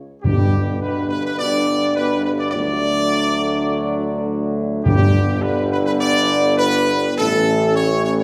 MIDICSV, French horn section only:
0, 0, Header, 1, 2, 480
1, 0, Start_track
1, 0, Tempo, 579710
1, 198, Time_signature, 4, 2, 24, 8
1, 6818, End_track
2, 0, Start_track
2, 0, Title_t, "French horn section"
2, 0, Program_c, 0, 60
2, 201, Note_on_c, 0, 59, 72
2, 204, Note_on_c, 0, 62, 71
2, 644, Note_off_c, 0, 59, 0
2, 646, Note_off_c, 0, 62, 0
2, 678, Note_on_c, 0, 59, 65
2, 678, Note_on_c, 0, 62, 70
2, 1121, Note_off_c, 0, 59, 0
2, 1121, Note_off_c, 0, 62, 0
2, 1154, Note_on_c, 0, 59, 72
2, 1160, Note_on_c, 0, 62, 82
2, 1596, Note_off_c, 0, 59, 0
2, 1600, Note_off_c, 0, 62, 0
2, 1637, Note_on_c, 0, 59, 76
2, 1638, Note_on_c, 0, 62, 84
2, 2080, Note_off_c, 0, 59, 0
2, 2081, Note_off_c, 0, 62, 0
2, 2108, Note_on_c, 0, 62, 80
2, 2112, Note_on_c, 0, 57, 90
2, 3990, Note_off_c, 0, 62, 0
2, 3992, Note_off_c, 0, 57, 0
2, 4010, Note_on_c, 0, 62, 80
2, 4011, Note_on_c, 0, 59, 97
2, 5912, Note_off_c, 0, 62, 0
2, 5913, Note_off_c, 0, 59, 0
2, 5943, Note_on_c, 0, 61, 81
2, 5946, Note_on_c, 0, 57, 95
2, 6818, Note_off_c, 0, 57, 0
2, 6818, Note_off_c, 0, 61, 0
2, 6818, End_track
0, 0, End_of_file